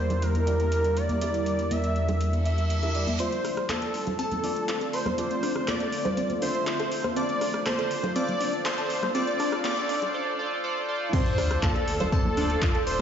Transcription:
Already playing: E2 D3 G3 A#3 E4 G4 A#4 C5 D5
0.10 closed hi-hat, high bongo, low conga
0.22 A#4, closed hi-hat
0.35 closed hi-hat, high conga, low conga
0.47 E4 G4 A#4 D5, closed hi-hat
0.60 closed hi-hat
0.72 closed hi-hat
0.84 closed hi-hat
0.97 D5, closed hi-hat
1.09 closed hi-hat, high conga
1.21 E4 G4 A#4 D5, closed hi-hat, high bongo
1.34 closed hi-hat
1.46 closed hi-hat
1.59 closed hi-hat
1.71 E5, closed hi-hat, high conga
1.84 closed hi-hat
1.96 closed hi-hat
2.08 closed hi-hat, high bongo, low conga
2.21 closed hi-hat, reverse cymbal
2.33 closed hi-hat, high conga
2.46 E5, closed hi-hat
2.58 closed hi-hat
2.70 closed hi-hat
2.83 E4 G4 A#4 E5, closed hi-hat, high bongo
2.95 E4 G4 A#4 D5, closed hi-hat
3.07 closed hi-hat, high conga, low conga
3.20 D3 A3 C4 F4 A4 C5 D5 C6, closed hi-hat, riser
3.32 closed hi-hat
3.45 D4, cross-stick, open hi-hat
3.57 cross-stick, closed hi-hat
3.69 A4 A5, clap, closed hi-hat, high conga
3.82 A4, closed hi-hat
3.94 open hi-hat
4.07 C5, closed hi-hat, high bongo, low conga
4.19 C4 A4 A5, closed hi-hat
4.32 closed hi-hat, high conga, low conga
4.44 D4 F4 A4 C5 D5, open hi-hat
4.56 closed hi-hat
4.68 F4, clap, closed hi-hat
4.81 A4, closed hi-hat
4.93 C5 C6, open hi-hat
5.06 C5, cross-stick, closed hi-hat, high conga, low conga
5.18 C4 F4 A4 C5 D5, closed hi-hat, high bongo
5.31 closed hi-hat
5.43 D4, cross-stick, open hi-hat
5.56 cross-stick
5.68 A4 D5 D6, clap, closed hi-hat, high conga
5.80 A4, closed hi-hat
5.92 open hi-hat
6.05 C5, closed hi-hat, high bongo, low conga
6.17 C4, closed hi-hat
6.30 closed hi-hat, high conga
6.42 D4 F4 A4 C5 E5 C6, open hi-hat
6.55 closed hi-hat
6.67 F4, clap, closed hi-hat
6.79 A4, closed hi-hat, high bongo
6.92 open hi-hat
7.04 C5, cross-stick, closed hi-hat, high conga
7.16 C4 D4 F4 A4 C5 D5 D6, closed hi-hat
7.29 closed hi-hat
7.41 D4, cross-stick, open hi-hat
7.54 cross-stick, closed hi-hat
7.66 A4 C5 C6, clap, closed hi-hat, high conga
7.79 A4, closed hi-hat
7.91 open hi-hat
8.03 C5, closed hi-hat, high bongo, low conga
8.16 C4 F4 A4 C5 D5 D6, closed hi-hat
8.28 closed hi-hat, high conga, low conga
8.40 D4, open hi-hat
8.53 closed hi-hat
8.65 A4 C5 C6, clap, closed hi-hat
8.78 A4, closed hi-hat
8.90 open hi-hat
9.03 C5, cross-stick, closed hi-hat, high conga, low conga
9.15 C4 F4 A4 C5 D5 D6, closed hi-hat, high bongo
9.28 closed hi-hat
9.40 D4, cross-stick, open hi-hat
9.52 cross-stick, closed hi-hat
9.64 C4 F4 A4 C5 D5 D6, clap, closed hi-hat, high conga
9.77 closed hi-hat
9.89 D4, open hi-hat
10.02 closed hi-hat, high bongo, low conga
10.14 F4 A4 C5 D5
10.39 F4 A4 C5 D5
10.64 F4 A4 C5 D5
10.88 F4 A4 C5 D5
11.13 D3 A3 C4 F4 A4 C5 C6, kick, closed hi-hat, crash, sub drop
11.26 closed hi-hat
11.38 D2 D4, cross-stick, open hi-hat
11.51 cross-stick, closed hi-hat
11.63 F4 A4 A5, kick, clap, closed hi-hat, high conga
11.75 A4, closed hi-hat
11.88 D2, open hi-hat
12.00 C5, closed hi-hat, high bongo, low conga
12.12 C4 A4 A5, kick, closed hi-hat
12.25 high conga, low conga
12.37 D2 D4 F4 A4 C5 D5, open hi-hat
12.50 closed hi-hat
12.62 F4, kick, clap, closed hi-hat
12.75 A4, closed hi-hat
12.87 D1 C5 C6, open hi-hat

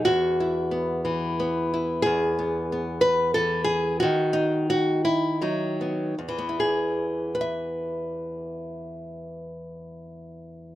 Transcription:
0.05 E2 F#4
0.40 E4
0.71 B3
1.05 E3
1.40 B3
1.74 E4
2.02 E2 G#4
2.39 B3
2.72 B3
3.01 B4
3.34 E3 A4
3.64 G#4
4.00 D#3 F#4
4.33 D#4
4.70 F#4
5.05 E4
5.42 F#3 D#4
5.81 B3
6.18 E2
6.28 E3
6.38 B3
6.49 E4
6.60 G#4
7.35 B4
7.41 E5

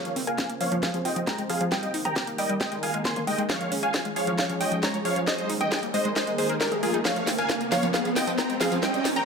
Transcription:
Already playing: C#3 A#3 C4 F4 C5 C#5 F5, riser
0.05 F3, closed hi-hat
0.16 C4, open hi-hat
0.27 A#4 F5 G#5, closed hi-hat
0.38 C#4, kick, snare, closed hi-hat
0.50 A#3, closed hi-hat
0.61 F3 C#5 F5, open hi-hat
0.72 F3, closed hi-hat
0.83 F3 G#3 G#4 F5, kick, snare, closed hi-hat
0.94 F3, closed hi-hat
1.05 F4 D#5 G5, open hi-hat
1.16 F3, closed hi-hat
1.27 G#3 G5 A#5, kick, snare, closed hi-hat
1.38 G#3, closed hi-hat
1.50 F3 G#4 F5, open hi-hat
1.61 F3, closed hi-hat
1.72 D#3 G3 A#3 G4 A#4 D#5 G5, kick, snare, closed hi-hat
1.83 G3, closed hi-hat
1.94 D#4, open hi-hat
2.05 D#5 G5 A#5, closed hi-hat, mid tom
2.16 G4, kick, snare, closed hi-hat
2.27 A#3, closed hi-hat
2.38 G3 D#5 G5, open hi-hat
2.50 G3, closed hi-hat
2.61 G#3 A#3 G#4 D#5 G5, kick, snare, closed hi-hat
2.72 G#3, closed hi-hat
2.83 G#4 F5 G#5, open hi-hat
2.94 G#3, closed hi-hat
3.05 A#3 G#5 C6, kick, snare, closed hi-hat
3.16 A#3, closed hi-hat, mid tom
3.27 G#3 D#5 G5, open hi-hat
3.38 G#3, closed hi-hat
3.49 F3 C#4 C#5 F5, kick, snare, closed hi-hat
3.61 F3, closed hi-hat
3.72 C#4, open hi-hat
3.83 C#5 F5 G#5, closed hi-hat
3.94 F4, kick, snare, closed hi-hat
4.05 G#3, closed hi-hat
4.16 F3 C#5 F5, open hi-hat
4.27 F3, closed hi-hat
4.38 F3 C#5 F5, kick, snare, closed hi-hat
4.50 F3, closed hi-hat
4.61 F4 D#5 G5, open hi-hat
4.72 F3, closed hi-hat
4.83 G#3 C#5 A#5, kick, snare, closed hi-hat
4.94 G#3, closed hi-hat
5.05 F3 C#5 F5, open hi-hat
5.16 F3, closed hi-hat
5.27 D#3 G#3 A#3 A#4 C5 D#5, kick, snare, closed hi-hat
5.38 G#3, closed hi-hat
5.50 D#4, open hi-hat
5.61 D#5 G5, closed hi-hat, mid tom
5.72 G#4, kick, snare, closed hi-hat
5.83 A#3, closed hi-hat
5.94 G#3 C5 D#5, open hi-hat
6.05 G#3, closed hi-hat
6.16 G#3 C5 D#5, kick, snare, closed hi-hat
6.27 G#3, closed hi-hat
6.38 G#3 G#4 C5, open hi-hat
6.49 A#4, closed hi-hat
6.61 D#4 G4 A#4, kick, snare, closed hi-hat
6.72 G#4, closed hi-hat, mid tom
6.83 F4 G#4 A#4, open hi-hat
6.94 D#4, closed hi-hat
7.05 C#3 F3 C4 F4 A#4 C#5 F5, kick, snare, closed hi-hat, tambourine
7.16 F3, closed hi-hat, tambourine
7.27 C4, snare, open hi-hat, tambourine
7.38 A#4 F5 G#5, closed hi-hat, tambourine
7.50 C#4, kick, snare, closed hi-hat, tambourine
7.61 A#3, closed hi-hat, tambourine
7.72 F3 C#5 F5, snare, open hi-hat, tambourine
7.83 F3, closed hi-hat, tambourine
7.94 F3 G#3 G#4 C5 F5, kick, snare, closed hi-hat, tambourine
8.05 F3, closed hi-hat, tambourine
8.16 F4 D#5 G5, snare, open hi-hat, tambourine
8.27 F3, closed hi-hat, tambourine
8.38 G#3 G5 A#5, kick, snare, closed hi-hat, tambourine
8.50 G#3, closed hi-hat, tambourine
8.61 F3 G#4 F5, snare, open hi-hat, tambourine
8.72 F3, closed hi-hat, tambourine
8.83 D#3 G3 A#3 G4 A#4 D#5 G5, kick, snare, closed hi-hat, tambourine
8.94 G3, closed hi-hat, tambourine
9.05 D#4, snare, open hi-hat, tambourine
9.16 D#5 G5 A#5, closed hi-hat, mid tom, tambourine

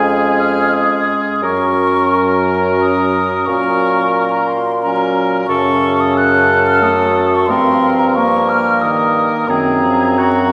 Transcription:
Already playing: F2 G#3 C#4 G#4 G#5
0.38 F6
0.73 D#6
1.42 F#2 F#3 C#4 A#4 C#6
2.81 D#6
3.46 A#2 F#3 C#4 A#4 C#6
4.31 A#5
4.48 C6
4.82 F#3 C#4 A#4 A#5
5.47 F#2 C#3 C#4 A4 C#6
6.00 D#6
6.16 A4 F#6
6.67 F6
6.82 F#3 A3 D#6
7.35 C#6
7.46 G2 F3 C6
7.50 C4 A#4
7.99 A#5
8.15 A#3 A#4 C#6
8.49 F6
8.81 D#3 A#4 D#6
9.47 F#2 D#3 C4 G#4 A#5
9.82 F3
10.18 F#3 F#4

